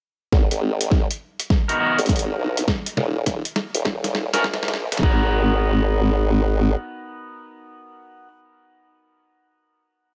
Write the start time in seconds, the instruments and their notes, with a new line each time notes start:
0.33 wobble bass G#1, kick, snare
0.51 wobble bass G#1, closed hi-hat
0.81 closed hi-hat
0.92 kick, snare
1.11 closed hi-hat
1.40 closed hi-hat
1.50 kick, snare
1.68 clean electric guitar B3 D#4 F#4 A#4, closed hi-hat
1.79 clean electric guitar B3 D#4 F#4 A#4
1.98 wobble bass G#1, closed hi-hat
2.06 kick, snare, closed hi-hat
2.09 closed hi-hat
2.16 closed hi-hat
2.19 closed hi-hat
2.38 wobble bass B1
2.57 closed hi-hat
2.68 kick, snare
2.86 closed hi-hat
2.97 wobble bass D#1, snare
3.26 kick, snare, closed hi-hat
3.45 closed hi-hat
3.56 snare
3.75 wobble bass D#1, closed hi-hat
3.85 kick, snare
4.04 snare, closed hi-hat
4.15 snare
4.34 wobble bass A#1, clean electric guitar C#4 F4 F#4 A#4, snare, closed hi-hat
4.44 kick, snare
4.54 snare
4.63 snare
4.68 snare
4.74 snare
4.92 wobble bass A#1, snare, closed hi-hat
4.97 snare
5.03 wobble bass G#1, clean electric guitar B3 D#4 F#4 A#4, kick